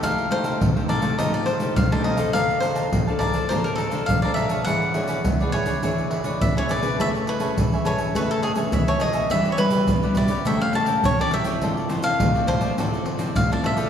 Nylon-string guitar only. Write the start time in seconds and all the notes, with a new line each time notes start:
Already playing: A3 D#4 G4
0.03 F3
0.30 A3 D#4 G4
0.60 C3
0.76 A3 D#4 G4
1.02 A3 D#4 G4
1.18 F3 A3 D#4 G4
1.59 A3 D#4 G4
1.76 C3
1.91 A3 D#4 G4
2.18 D4 A4 C5
2.35 A#3
2.63 D4 A4 C5
2.93 F3
3.08 D4 A4 C5
3.34 D4 A4 C5
3.51 A#3 D4 A4 C5
3.92 D4 A4 C5
4.09 F3
4.25 D4 A4 C5
4.50 D4 G#4 C#5
4.67 E3
4.95 D4 G#4 C#5
5.25 B2
5.41 D4 G#4 C#5
5.66 D4 G#4 C#5
5.84 E3 D4 G#4 C#5
6.24 D4 G#4 C#5
6.42 B2
6.56 D4 G#4 C#5
6.82 C#4 G#4 B4
6.99 A3
7.39 C#4 G#4 B4
7.56 E3
7.84 C#4 G#4 B4
8.14 A3 C#4 G#4 B4
8.56 C#4 G#4 B4
8.73 E3
9.00 C#4 G#4 B4
9.30 E3 G3 D4 F#4
9.58 G3 D4 F#4
9.88 B2
10.03 G3 D4 F#4
10.28 C#4 G4 A#4
10.47 A3
10.87 C#4 G4 A#4
11.04 E3
11.19 C#4 G4 A#4
11.45 F3 C4 E4
11.61 D3
11.89 F3 C4 E4
12.19 A2
12.35 F3 C4 E4
12.61 F3 C4 E4
12.78 D3 F3 C4 E4
13.18 F3 C4 E4
13.36 A2
13.51 F3 C4 E4
13.76 A#3 F4 A4